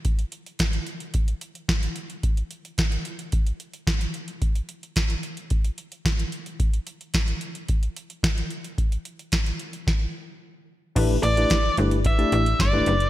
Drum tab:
CC |----------------|----------------|----------------|----------------|
HH |xxxxxxxxxxxxxxxx|xxxxxxxxxxxxxxxx|xxxxxxxxxxxxxxxx|xxxxxxxxxxxxxxxx|
SD |----o-------o---|----o-------o---|----o-------o---|----o-------o---|
BD |o---o---o---o---|o---o---o---o---|o---o---o---o---|o---o---o---o---|

CC |----------------|x---------------|
HH |xxxxxxxx--------|x-xxx-xxxxxxx-xx|
SD |----o---o-------|----o-------o---|
BD |o---o---o-------|o---o---o---o---|